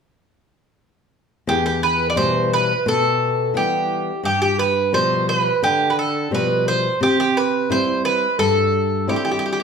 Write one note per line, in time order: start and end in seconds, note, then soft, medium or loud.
1.47 2.14 E2 medium
1.47 1.65 G4 medium
1.66 1.81 G4 medium
1.83 2.08 B4 medium
2.10 2.17 D5 medium
2.16 2.72 B2 soft
2.16 2.71 E3 soft
2.16 2.72 G3 soft
2.16 2.52 C5 medium
2.54 2.88 B4 medium
2.86 3.53 B2 medium
2.86 3.52 A4 medium
3.54 4.10 E3 soft
3.54 4.10 G3 soft
3.54 4.10 B3 soft
3.54 4.21 G4 medium
4.23 4.91 G2 medium
4.23 4.40 G4 medium
4.42 4.58 G4 medium
4.59 4.91 B4 medium
4.93 5.49 B2 medium
4.93 5.48 F3 soft
4.93 5.49 G3 soft
4.93 5.26 C5 medium
5.29 5.61 B4 medium
5.63 6.30 D3 medium
5.63 5.91 G4 medium
5.90 5.97 B4 medium
5.99 6.30 A4 medium
6.31 6.87 B2 soft
6.31 6.86 F3 soft
6.31 6.87 G3 soft
6.31 6.65 B4 medium
6.68 6.99 C5 medium
7.01 7.68 C3 medium
7.01 7.18 G4 medium
7.20 7.37 G4 medium
7.37 7.71 B4 medium
7.69 8.25 G3 soft
7.69 8.25 C4 soft
7.69 8.25 E4 medium
7.69 8.03 C5 medium
8.05 8.37 B4 medium
8.39 9.06 G2 medium
8.39 9.09 A4 medium
9.07 9.63 G3 soft
9.07 9.63 C4 soft
9.07 9.63 E4 medium
9.07 9.15 G4 medium
9.16 9.23 G4 soft
9.25 9.30 G4 medium
9.31 9.38 G4 medium
9.39 9.44 G4 medium
9.46 9.51 G4 soft
9.53 9.59 G4 medium
9.60 9.63 G4 soft